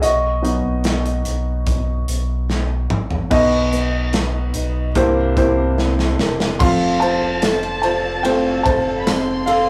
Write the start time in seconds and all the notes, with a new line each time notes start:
0.02 B1 F#4 D#5, closed hi-hat
0.42 F#3 B3 D#4, closed hi-hat
0.64 B1
0.84 snare, closed hi-hat
1.06 closed hi-hat
1.25 B1, closed hi-hat
1.67 kick, closed hi-hat
2.08 B1, closed hi-hat
2.50 snare
2.90 A1, mid tom
3.11 floor tom
3.30 B1 B2 B3 D#4 F#4 D#5, kick, crash
3.73 B3, closed hi-hat
4.13 B4, snare, closed hi-hat
4.54 B1 D#4, closed hi-hat
4.95 C2 G2 C3 A#3 E4 G4 C5, kick, closed hi-hat
5.37 A#3 E4 G4 A#4 C5, kick, closed hi-hat
5.78 E4, snare
5.99 snare
6.19 E1 A#4, snare
6.40 snare
6.59 F1 F3 A3 C4 F4 F5 A5 C6, kick, crash
7.00 F4 C5 A5, ride
7.22 F1
7.42 A4, snare, ride, tambourine
7.63 ride
7.82 F4 C5 A5, ride
8.23 A3 C4 F4 C5 G5, ride
8.63 F1 A4 C5 A5, kick, ride
9.00 B5
9.06 C4 C6, snare, ride, tambourine
9.46 A4 F5, ride